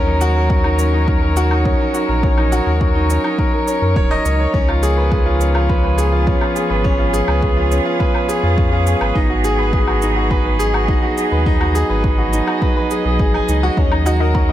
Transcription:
0.00 1.74 D#2 loud
0.00 4.54 F#3 medium
0.00 0.79 C#4 loud
0.00 0.07 D#4 medium
0.00 6.27 D#4 medium
0.00 0.21 F#4 loud
0.00 0.36 A#4 medium
0.00 6.23 A#4 medium
0.00 11.00 C#5 medium
0.07 0.21 D#4 medium
0.21 0.30 F#4 loud
0.21 shaker medium
0.36 0.49 A#4 medium
0.50 0.58 F#4 medium
0.50 kick loud
0.64 0.73 D#4 medium
0.64 low woodblock medium
0.79 0.87 C#4 medium
0.79 shaker medium
0.93 1.07 D#4 medium
1.07 1.21 A#4 medium
1.07 kick loud
1.22 1.36 A#4 medium
1.36 1.45 F#4 loud
1.36 shaker medium
1.51 1.65 D#4 medium
1.51 low woodblock medium
1.65 1.74 C#4 medium
1.65 kick loud
1.80 1.88 D#4 medium
1.94 2.08 F#4 medium
1.94 shaker medium
2.08 2.61 A#1 medium
2.08 2.22 A#4 medium
2.23 2.37 C#4 medium
2.23 kick loud
2.38 2.51 D#4 medium
2.38 low woodblock medium
2.52 2.60 F#4 loud
2.52 shaker medium
2.67 3.19 D#2 loud
2.67 2.80 A#4 medium
2.81 2.89 F#4 medium
2.81 kick loud
2.95 3.03 D#4 medium
3.10 3.18 C#4 medium
3.10 shaker medium
3.24 3.38 D#4 medium
3.24 low woodblock medium
3.39 3.52 A#4 medium
3.39 kick loud
3.53 3.67 A#4 medium
3.67 3.81 C#4 medium
3.67 shaker medium
3.82 3.96 F#2 loud
3.82 3.90 A#4 medium
3.96 4.18 D#1 loud
3.96 4.10 C#5 loud
3.96 kick loud
4.11 4.24 D#5 loud
4.11 low woodblock medium
4.25 4.47 C#2 medium
4.25 4.38 C#5 medium
4.25 shaker medium
4.40 4.53 C#5 medium
4.54 6.36 C#2 loud
4.54 9.16 F3 medium
4.54 4.68 C#4 loud
4.54 kick loud
4.68 4.82 F4 medium
4.68 low woodblock medium
4.76 13.77 B3 medium
4.76 14.52 G#4 medium
4.83 4.91 G#4 loud
4.83 shaker medium
4.97 5.11 B4 medium
5.12 5.20 G#4 medium
5.12 kick loud
5.26 5.34 F4 medium
5.40 5.49 C#4 medium
5.40 shaker medium
5.55 5.68 F4 medium
5.55 low woodblock medium
5.69 5.82 B4 medium
5.69 kick loud
5.83 5.97 B4 medium
5.98 6.06 G#4 loud
5.98 shaker medium
6.12 6.26 F4 medium
6.27 6.35 C#4 medium
6.27 kick loud
6.41 6.50 F4 medium
6.41 low woodblock medium
6.56 6.69 G#4 medium
6.56 shaker medium
6.70 7.22 G#1 medium
6.70 6.84 B4 medium
6.84 6.98 C#4 loud
6.84 kick loud
6.99 7.13 F4 medium
7.13 7.22 G#4 loud
7.13 shaker medium
7.28 7.80 C#2 loud
7.28 7.42 B4 medium
7.28 low woodblock medium
7.42 7.51 G#4 medium
7.42 kick loud
7.57 7.65 F4 medium
7.71 7.79 C#4 medium
7.71 shaker medium
7.85 7.99 F4 medium
8.00 8.13 B4 medium
8.00 kick medium
8.14 8.28 B4 medium
8.14 low woodblock medium
8.29 8.37 G#4 loud
8.29 shaker medium
8.43 8.95 F2 loud
8.43 8.57 F4 medium
8.57 8.66 C#4 medium
8.57 kick loud
8.72 8.80 F4 medium
8.87 9.00 G#4 medium
8.87 shaker medium
9.01 9.12 G#1 medium
9.01 9.15 B4 medium
9.01 low woodblock medium
9.15 10.98 G#1 loud
9.15 14.52 F#3 medium
9.15 9.29 D#4 medium
9.15 kick medium
9.30 9.44 F#4 medium
9.44 9.53 G#4 loud
9.44 shaker medium
9.59 9.72 B4 medium
9.73 9.81 G#4 medium
9.73 14.52 D#5 medium
9.73 kick medium
9.87 9.96 F#4 medium
9.87 low woodblock medium
10.02 10.10 D#4 medium
10.02 shaker medium
10.16 10.30 F#4 medium
10.31 10.43 B4 medium
10.31 kick medium
10.45 10.59 B4 medium
10.59 10.68 G#4 loud
10.59 shaker medium
10.74 10.88 F#4 medium
10.74 low woodblock medium
10.88 10.97 D#4 medium
10.88 kick loud
11.03 11.11 F#4 medium
11.17 11.31 G#4 medium
11.17 shaker medium
11.32 11.84 D#2 medium
11.32 11.45 B4 medium
11.46 11.60 D#4 loud
11.46 kick loud
11.61 11.74 F#4 medium
11.61 low woodblock medium
11.75 11.83 G#4 loud
11.75 shaker medium
11.89 12.42 G#1 loud
11.89 12.03 B4 medium
12.04 12.12 G#4 medium
12.04 kick loud
12.18 12.27 F#4 medium
12.33 12.41 D#4 medium
12.33 shaker medium
12.47 12.61 F#4 medium
12.47 low woodblock medium
12.62 12.75 B4 medium
12.62 kick loud
12.76 12.90 B4 medium
12.91 12.99 G#4 medium
12.91 shaker medium
13.05 13.19 B1 loud
13.05 13.13 G#4 medium
13.19 13.41 G#1 loud
13.19 13.33 G#4 medium
13.19 kick loud
13.34 13.48 G#5 medium
13.34 low woodblock medium
13.48 13.70 C#2 loud
13.48 13.62 D#4 medium
13.48 shaker medium
13.63 13.77 F#4 loud
13.77 14.52 D#2 loud
13.77 13.91 C#4 medium
13.77 13.85 D#4 medium
13.77 kick loud
13.90 14.52 C#4 medium
13.90 14.05 D#4 medium
13.90 13.99 A#4 medium
13.90 low woodblock medium
14.01 14.52 A#4 medium
14.06 14.13 D#4 medium
14.06 14.14 F#4 loud
14.06 shaker medium
14.20 14.25 D#4 medium
14.20 14.34 A#4 medium
14.35 14.43 F#4 medium
14.35 14.42 A#4 medium
14.35 kick loud
14.49 14.52 D#4 medium

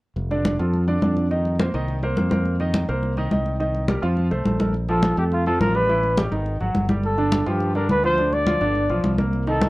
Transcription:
0.16 0.56 F1 medium
0.16 high conga soft
0.30 0.54 D3 medium
0.30 0.54 D4 medium
0.30 0.54 D5 medium
0.30 high conga soft
0.45 high conga medium
0.59 0.99 F2 medium
0.59 0.83 F3 medium
0.59 0.83 F4 medium
0.59 0.83 A4 medium
0.59 high conga soft
0.73 high conga soft
0.88 0.99 D3 medium
0.88 1.00 D4 medium
0.88 1.00 D5 medium
0.88 high conga soft
1.02 1.68 F2 medium
1.02 1.25 D3 medium
1.02 1.26 D4 medium
1.02 1.26 D5 medium
1.02 high conga medium
1.17 high conga soft
1.31 1.54 D#3 medium
1.31 1.54 D#4 medium
1.31 1.54 D#5 medium
1.31 high conga soft
1.45 high conga soft
1.59 1.71 A#3 medium
1.59 1.71 A#4 medium
1.59 1.72 C5 medium
1.59 high conga medium
1.74 2.14 C2 medium
1.74 1.97 D#3 medium
1.74 1.98 D#4 medium
1.74 1.98 D#5 medium
1.74 high conga soft
1.88 high conga soft
2.03 2.14 A#3 medium
2.03 2.15 A#4 medium
2.03 2.15 C5 medium
2.03 high conga soft
2.17 2.83 F2 medium
2.17 2.29 A#3 medium
2.17 2.29 A#4 medium
2.17 2.29 C5 medium
2.17 high conga medium
2.31 2.54 A#3 medium
2.31 2.55 A#4 medium
2.31 2.55 C5 medium
2.31 high conga medium
2.46 high conga soft
2.60 2.83 D#3 medium
2.60 2.83 D#4 medium
2.60 2.84 D#5 medium
2.60 high conga soft
2.74 high conga medium
2.88 3.28 C2 medium
2.88 3.12 A#3 medium
2.88 3.12 A#4 medium
2.88 3.12 C5 medium
2.88 high conga soft
3.03 high conga soft
3.17 3.29 D#3 medium
3.17 3.29 D#4 medium
3.17 3.29 D#5 medium
3.17 high conga soft
3.31 3.97 C2 medium
3.31 3.55 D#3 medium
3.31 3.55 D#4 medium
3.31 3.55 D#5 medium
3.31 high conga medium
3.46 high conga soft
3.60 3.83 D#3 medium
3.60 3.83 D#4 medium
3.60 3.84 D#5 medium
3.60 high conga soft
3.75 high conga soft
3.88 4.00 G3 medium
3.88 4.00 G4 medium
3.88 4.00 A#4 medium
3.88 high conga medium
4.02 4.30 F2 medium
4.02 4.26 F3 medium
4.02 4.26 F4 medium
4.02 4.26 F5 medium
4.02 high conga soft
4.17 high conga soft
4.31 4.45 C2 medium
4.31 4.43 A3 medium
4.31 4.43 A4 medium
4.31 4.43 C5 medium
4.31 high conga soft
4.46 5.12 A#1 medium
4.46 4.58 A3 medium
4.46 4.58 A4 medium
4.46 4.58 C5 medium
4.46 high conga medium
4.60 4.72 A3 medium
4.60 4.72 A4 medium
4.60 4.72 A#4 medium
4.60 high conga medium
4.74 high conga soft
4.89 5.12 F3 medium
4.89 5.13 F4 medium
4.89 5.16 A4 medium
4.89 high conga soft
5.03 high conga medium
5.17 5.57 F2 medium
5.17 5.41 A3 medium
5.17 5.25 G4 medium
5.17 5.41 A4 medium
5.17 high conga soft
5.32 5.46 F4 medium
5.32 high conga soft
5.46 5.70 F3 medium
5.46 5.70 F4 medium
5.46 5.60 A4 medium
5.46 high conga soft
5.60 6.26 A1 medium
5.60 5.77 A#4 medium
5.60 high conga medium
5.75 5.87 G3 medium
5.75 5.87 G4 medium
5.75 6.18 B4 loud
5.75 high conga soft
5.89 6.13 E3 medium
5.89 6.13 E4 medium
5.89 high conga soft
6.03 high conga soft
6.18 6.29 G3 medium
6.18 6.30 G4 medium
6.18 high conga medium
6.32 6.59 G#1 medium
6.32 6.55 D#3 medium
6.32 6.55 D#4 medium
6.32 high conga soft
6.46 high conga soft
6.61 6.74 G#1 medium
6.61 6.84 F#3 medium
6.61 6.84 F#4 medium
6.61 high conga soft
6.75 7.41 G1 medium
6.75 high conga medium
6.89 7.13 G3 medium
6.89 7.13 G4 medium
6.89 high conga medium
7.03 7.49 A4 medium
7.03 high conga soft
7.18 7.41 D3 medium
7.18 7.42 D4 medium
7.18 high conga soft
7.32 high conga medium
7.46 7.86 G2 medium
7.46 7.70 F3 medium
7.46 7.70 F4 medium
7.46 7.76 G4 medium
7.46 high conga soft
7.60 high conga soft
7.75 7.99 D3 medium
7.75 7.99 D4 medium
7.75 7.89 A#4 medium
7.75 high conga soft
7.89 8.56 D2 medium
7.89 8.03 B4 medium
7.89 high conga medium
8.03 8.15 F3 medium
8.03 8.15 F4 medium
8.03 8.35 C5 loud
8.03 high conga soft
8.18 8.41 D3 medium
8.18 8.42 D4 medium
8.18 high conga soft
8.32 9.19 D5 medium
8.32 high conga soft
8.46 8.58 F3 medium
8.46 8.58 F4 medium
8.46 high conga medium
8.61 8.87 G1 medium
8.61 8.84 D3 medium
8.61 8.84 D4 medium
8.61 high conga soft
8.75 high conga soft
8.89 9.03 B1 medium
8.89 9.13 F3 medium
8.89 9.13 F4 medium
8.89 high conga soft
9.04 9.69 C2 medium
9.04 high conga medium
9.18 9.42 A#3 medium
9.18 9.42 A#4 medium
9.18 high conga medium
9.33 high conga soft
9.47 9.69 D#3 medium
9.47 9.69 D#4 medium
9.47 9.69 A4 medium
9.47 high conga soft
9.61 high conga medium

